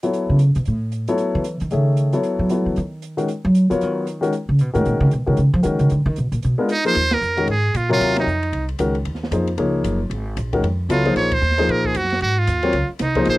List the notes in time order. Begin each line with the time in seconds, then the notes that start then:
0.03 F#3 B3 E4 A4 C#5, closed hi-hat
0.13 closed hi-hat
0.29 C#3
0.39 closed hi-hat
0.55 B2, closed hi-hat
0.65 A2, closed hi-hat
0.92 closed hi-hat
1.07 F#3 B3 E4 A4 C#5, closed hi-hat
1.18 closed hi-hat
1.35 E3
1.44 closed hi-hat
1.60 D#3, closed hi-hat
1.71 C#3 D#3 A3 G#4 C#5 E5, closed hi-hat
1.97 closed hi-hat
2.13 F#3 B3 E4 A4 C#5, closed hi-hat
2.23 closed hi-hat
2.39 F#3
2.49 F#3 B3 E4 A4 C#5, closed hi-hat
2.66 E3
2.76 D#3, closed hi-hat
3.02 closed hi-hat
3.17 D#3 G#3 C#4 F#4 A#4, closed hi-hat
3.28 closed hi-hat
3.45 F#3
3.55 closed hi-hat
3.70 F3 F#3 B3 F4 A#4 C#5, closed hi-hat
3.81 D#3, closed hi-hat
4.07 closed hi-hat
4.21 D#3 G#3 C#4 F#4 A#4, closed hi-hat
4.33 closed hi-hat
4.49 C#3
4.59 B2, closed hi-hat
4.73 A2 D#3 G#3 C#4 F#4 A#4, closed hi-hat
4.85 A#2, closed hi-hat
5.00 C#3
5.11 B2, closed hi-hat
5.26 C3 D#3 G#3 C#4 F#4 A#4
5.37 C#3, closed hi-hat
5.54 F3
5.63 D#3 G#3 C#4 F#4 A#4, closed hi-hat
5.79 C#3, closed hi-hat
5.89 D3, closed hi-hat
6.06 D#3
6.16 B2, closed hi-hat
6.32 A#2, closed hi-hat
6.42 B2, closed hi-hat
6.58 G#3 B3 D4 F4 A#4
6.69 D#4, closed hi-hat
6.85 F3 A#3 D#4 G#4 A#4 C5, closed hi-hat
6.95 D#2, ride
7.11 A#4, snare, ride
7.21 F2, hi-hat pedal
7.37 D#3 G#3 C#4 F#4 A#4, ride
7.47 G#2 G#4, ride
7.74 A#2 F4, hi-hat pedal, ride
7.89 C3 F#3 F4 A#4 C#5, ride
8.00 D#2, ride
8.16 D#4, snare, ride
8.27 F2, hi-hat pedal
8.43 ride
8.52 C2, ride
8.69 ride
8.79 C#2 D#3 G#3 C#4 F#4 A#4, hi-hat pedal, ride
8.95 ride
9.05 D#2, ride
9.15 snare
9.23 snare
9.31 F2 F3 A#3 D#4 G#4 C5, hi-hat pedal, ride
9.47 ride
9.58 C#2 F3 A#3 D#4 G#4 C#5, ride
9.84 F#1, hi-hat pedal, ride
10.10 G#1, ride
10.37 A#1, hi-hat pedal, ride
10.53 D#3 G#3 C#4 F#4 A#4, kick, ride
10.62 F2, ride
10.89 C#2 F#3 B3 E4 F4 A4 C#5, hi-hat pedal, ride
11.05 F3 A#3 D#4 G#4 C5, ride
11.16 A#1 C#5, snare, ride
11.31 C5, kick, ride
11.42 D#2, hi-hat pedal
11.51 snare
11.58 F3 A#3 D#4 G#4 C5, snare, ride
11.68 A#2 A#4, ride
11.85 G#4, kick
11.94 F#2 F#4, hi-hat pedal, ride
12.04 snare
12.10 snare, ride
12.20 G#2 F#4, ride
12.39 F4
12.47 D#2, hi-hat pedal, ride
12.63 F#3 C4 F4 A#4 C#5, ride
12.73 C#2, ride
12.89 muted upright bass stroke
12.99 C2 D#4, snare, hi-hat pedal, ride
13.15 F3 A#3 D#4 G#4 C5, kick, ride
13.25 A#1, snare, ride
13.29 C5